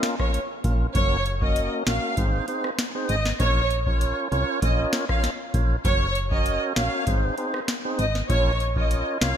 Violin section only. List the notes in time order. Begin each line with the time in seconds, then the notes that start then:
0.19 C#5
0.95 C#5
1.42 D#5
1.87 F5
3.09 D#5
3.40 C#5
3.87 C#5
4.32 C#5
4.63 D#5
5.10 F5
5.85 C#5
6.32 D#5
6.77 F5
7.99 D#5
8.30 C#5
8.77 D#5
9.21 F5